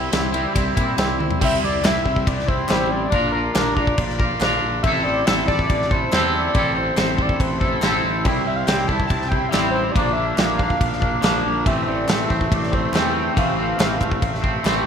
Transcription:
Already playing: clean electric guitar C4 E4, analog synth pad E4 G4 C5 G5
0.11 picked electric bass C2, clean electric guitar G3 C4 E4, snare, ride
0.32 clean electric guitar G3 C4 E4, ride
0.53 picked electric bass C2, clean electric guitar G3 C4 E4, kick, ride
0.75 picked electric bass A#2, clean electric guitar G3 C4 E4, kick, ride
0.96 picked electric bass C2, clean electric guitar G3 C4 E4, snare, ride
1.18 clean electric guitar C4 E4, high tom
1.31 floor tom
1.40 picked electric bass C2, clean electric guitar G3 C4 E4, kick, crash
1.44 analog synth lead E5
1.61 picked electric bass C2, clean electric guitar C4 E4, analog synth lead D5
1.82 picked electric bass C2, clean electric guitar G3 C4 E4, analog synth lead E5, snare, clap, crash
2.04 picked electric bass C2, clean electric guitar C4 E4, kick
2.16 kick
2.27 picked electric bass C2, analog synth lead D5, kick, crash
2.39 snare
2.47 clean electric guitar C4 E4, analog synth lead C5, kick
2.68 picked electric bass A1, clean electric guitar G3 C4 E4, snare, clap, crash
2.91 analog synth lead D5
3.10 picked electric bass A#1, clean electric guitar D4 F4 A#4, kick, crash
3.31 clean electric guitar F4 A#4, analog synth lead A#4
3.54 picked electric bass A#1, clean electric guitar D4 F4 A#4, analog synth lead A#4, snare, clap, crash
3.75 clean electric guitar A#4, analog synth lead D5, kick
3.80 clean electric guitar F4
3.87 kick
3.97 picked electric bass A#1, analog synth lead D5, kick, crash
4.09 snare
4.19 clean electric guitar F4 A#4, kick
4.40 picked electric bass A#1, clean electric guitar D4 F4 A#4, snare, clap, crash
4.63 picked electric bass A#1
4.83 picked electric bass A1, clean electric guitar C4 E4, analog synth lead E5, kick, crash
4.87 clean electric guitar A4
5.03 picked electric bass A1, clean electric guitar A4, analog synth lead D5
5.08 clean electric guitar E4
5.24 picked electric bass A1, clean electric guitar C4 E4 A4, analog synth lead E5, snare, clap, crash
5.46 picked electric bass A1, clean electric guitar E4 A4, analog synth lead D5, kick
5.59 kick
5.70 picked electric bass A1, kick, crash
5.82 snare
5.90 clean electric guitar E4 A4, analog synth lead C5, kick
6.12 picked electric bass E2, clean electric guitar C4 E4 A4, snare, clap, crash
6.35 analog synth lead D5
6.54 picked electric bass A1, clean electric guitar C4 E4 A4, kick, crash
6.75 clean electric guitar E4 A4, analog synth lead C5
6.96 picked electric bass A1, clean electric guitar C4 E4 A4, snare, clap, crash
7.00 analog synth lead C5
7.17 clean electric guitar E4 A4, kick
7.22 analog synth lead D5
7.29 kick
7.40 picked electric bass A1, analog synth lead C5, kick, crash
7.60 clean electric guitar A4, kick
7.64 clean electric guitar E4
7.81 picked electric bass A1, clean electric guitar C4 E4 A4, snare, clap, crash
8.03 picked electric bass A1
8.24 picked electric bass C2, clean electric guitar G3 C4 E4, analog synth pad E4 G4 C5, kick, crash
8.45 picked electric bass C2, clean electric guitar C4 E4, analog synth lead E5
8.56 analog synth lead F5
8.67 picked electric bass C2, clean electric guitar G3 C4 E4, analog synth lead G5, snare, clap, crash
8.87 picked electric bass C2, clean electric guitar C4 E4, analog synth lead A5, kick
9.00 kick
9.07 picked electric bass C2, analog synth lead A5, kick, crash
9.22 snare
9.28 clean electric guitar E4, analog synth lead G5, kick
9.34 clean electric guitar C4
9.49 clean electric guitar G3 C4, analog synth lead E5
9.53 picked electric bass A1, clean electric guitar E4, snare, clap, crash
9.70 analog synth lead C5
9.91 clean electric guitar F3 A#3, analog synth lead D5
9.96 picked electric bass A#1, analog synth pad D4 A#4, clean electric guitar D4, kick, crash
10.13 clean electric guitar D4, analog synth lead E5
10.18 clean electric guitar A#3
10.36 picked electric bass A#1, clean electric guitar F3 A#3 D4, snare, clap, crash
10.57 clean electric guitar A#3 D4, analog synth lead F5, kick
10.70 kick
10.81 picked electric bass A#1, kick, crash
10.93 snare
11.00 clean electric guitar A#3 D4, kick
11.21 picked electric bass A#1, clean electric guitar F3 A#3 D4, snare, clap, crash
11.45 picked electric bass A#1
11.64 picked electric bass A1, clean electric guitar E3 A3 C4, analog synth pad E3 A3 C4 C5, analog synth lead E5, kick, crash
11.86 picked electric bass A1, clean electric guitar A3 C4, analog synth lead D5
12.07 picked electric bass A1, clean electric guitar E3 A3 C4, analog synth lead E5, snare, clap, crash
12.29 picked electric bass A1, clean electric guitar A3 C4, kick
12.41 kick
12.52 picked electric bass A1, analog synth lead D5, kick, crash
12.63 snare
12.71 clean electric guitar A3 C4, analog synth lead C5, kick
12.92 picked electric bass E2, clean electric guitar E3 A3 C4, analog synth lead G5, snare, clap, crash
13.34 picked electric bass A1, clean electric guitar E3 A3 C4, analog synth lead F5, kick, crash
13.57 clean electric guitar A3 C4
13.77 picked electric bass A1, clean electric guitar E3 A3 C4, snare, clap, crash
13.98 clean electric guitar A3 C4, kick, clap
14.12 kick
14.22 picked electric bass A1, kick, crash
14.35 snare
14.42 clean electric guitar A3 C4, kick
14.64 picked electric bass A1, clean electric guitar E3 A3 C4, snare, clap, crash

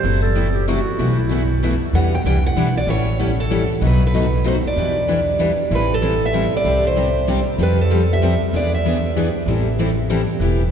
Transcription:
Already playing: clarinet C5
0.03 upright bass F#1, steel-string acoustic guitar C3 E3 F#3 A3 C4 E4 F#4 A4
0.22 clarinet A4
0.35 steel-string acoustic guitar C3 E3 F#3 A3 C4 E4 F#4 A4
0.54 clarinet G4
0.68 steel-string acoustic guitar C3 E3 F#3 A3 C4 E4 F#4 A4, clarinet F#4
0.99 upright bass B1, steel-string acoustic guitar B2 E3 A3 E4 F#4 B4
1.19 clarinet E4
1.31 steel-string acoustic guitar B2 E3 A3 E4 F#4 B4
1.63 steel-string acoustic guitar B2 E3 A3 E4 F#4 B4
1.93 upright bass E2, steel-string acoustic guitar E3 G3 D4 E4 B4 F#5
2.15 steel-string acoustic guitar G5
2.24 upright bass C2, steel-string acoustic guitar E3 G3 D4 E4 B4 G5
2.46 steel-string acoustic guitar F#5
2.56 upright bass B1, steel-string acoustic guitar E3 G3 D4 E4 B4
2.77 steel-string acoustic guitar D5
2.87 upright bass A1, steel-string acoustic guitar E3 G3 C#4 E4 A4 C#5
3.19 steel-string acoustic guitar E3 G3 C#4 E4 A4
3.40 steel-string acoustic guitar A4
3.52 steel-string acoustic guitar E3 G3 C#4 E4 A4
3.81 upright bass B1, steel-string acoustic guitar B2 F#3 A3 D#4 F#4 B4
3.87 steel-string acoustic guitar B4
4.07 steel-string acoustic guitar B4
4.15 steel-string acoustic guitar B2 F#3 A3 D#4 F#4 B4
4.46 steel-string acoustic guitar B2 F#3 A3 D#4 F#4 B4 C5
4.67 steel-string acoustic guitar D5
4.76 upright bass E2, steel-string acoustic guitar E3 G3 D4 E4 B4
5.08 steel-string acoustic guitar E3 G3 D4 E4 B4
5.39 steel-string acoustic guitar E3 G3 D4 E4 B4
5.71 upright bass A1, steel-string acoustic guitar E3 G3 C4 E4 A4
5.75 steel-string acoustic guitar B4
5.94 steel-string acoustic guitar A4
6.02 steel-string acoustic guitar E3 G3 C4 E4 A4
6.25 steel-string acoustic guitar E5
6.33 steel-string acoustic guitar E3 G3 C4 E4 A4
6.56 steel-string acoustic guitar D5
6.64 upright bass C2, steel-string acoustic guitar C3 G3 C4 D4 G4
6.87 steel-string acoustic guitar C5
6.96 steel-string acoustic guitar C3 G3 C4 D4 G4
7.28 steel-string acoustic guitar C3 G3 C4 D4 G4
7.58 upright bass F2, steel-string acoustic guitar F3 G3 C4 F4 G4 A4
7.63 steel-string acoustic guitar B4
7.81 steel-string acoustic guitar A4
7.90 steel-string acoustic guitar F3 G3 C4 F4 G4 A4
8.13 steel-string acoustic guitar E5
8.21 steel-string acoustic guitar F3 G3 C4 F4 G4 A4
8.53 upright bass E2, steel-string acoustic guitar E3 B3 D4 G#4 B4 D5
8.74 steel-string acoustic guitar E5
8.85 steel-string acoustic guitar E3 B3 D4 G#4 B4
9.16 steel-string acoustic guitar E3 B3 D4 G#4 B4
9.46 upright bass A1, steel-string acoustic guitar E3 G3 C4 E4 A4
9.78 steel-string acoustic guitar E3 G3 C4 E4 A4
10.09 steel-string acoustic guitar E3 G3 C4 E4 A4
10.40 upright bass E1, steel-string acoustic guitar E3 B3 E4 G4 B4

